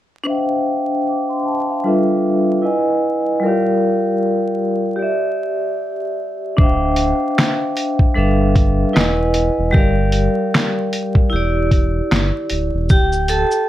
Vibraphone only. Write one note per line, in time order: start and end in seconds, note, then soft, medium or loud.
0.24 1.80 D4 medium
0.24 1.81 C5 medium
0.24 1.04 E5 medium
0.28 1.05 F5 medium
0.28 1.06 G5 medium
1.08 1.29 D6 medium
1.29 1.45 C6 medium
1.45 1.67 A5 medium
1.70 2.07 F5 medium
1.84 2.63 G3 medium
1.84 2.64 D4 medium
1.84 2.64 F4 medium
1.84 2.64 A4 medium
1.84 2.62 B4 medium
1.84 2.65 E5 medium
2.62 3.42 E4 medium
2.62 3.42 B4 medium
2.62 3.43 D#5 medium
2.62 3.43 F#5 medium
2.62 3.44 G#5 medium
3.40 4.96 G3 medium
3.40 3.50 F4 soft
3.40 4.98 A#4 medium
3.45 4.95 G4 medium
3.45 4.98 D5 medium
3.45 4.99 F5 medium
4.96 6.53 G4 medium
4.96 6.55 D5 medium
5.02 6.56 E5 medium
6.57 8.12 D4 medium
6.57 8.13 C5 medium
6.57 8.14 E5 medium
6.62 8.15 F5 medium
6.62 8.16 G5 medium
8.15 8.94 G3 medium
8.15 8.95 D4 medium
8.15 8.95 A4 medium
8.15 8.93 B4 medium
8.15 8.96 E5 medium
8.15 8.96 F5 medium
8.93 9.73 E4 medium
8.93 9.74 B4 medium
8.93 9.74 D#5 medium
8.93 9.74 F#5 medium
8.93 9.75 G#5 medium
9.71 11.27 G3 medium
9.71 11.28 G4 medium
9.71 11.29 A#4 medium
9.76 11.30 D5 medium
9.76 11.31 F5 medium
11.30 12.86 E4 medium
11.30 12.87 G4 medium
11.36 12.89 D5 medium
12.91 13.08 G4 medium
12.91 13.09 G5 medium
13.29 13.69 A4 medium
13.29 13.69 A5 medium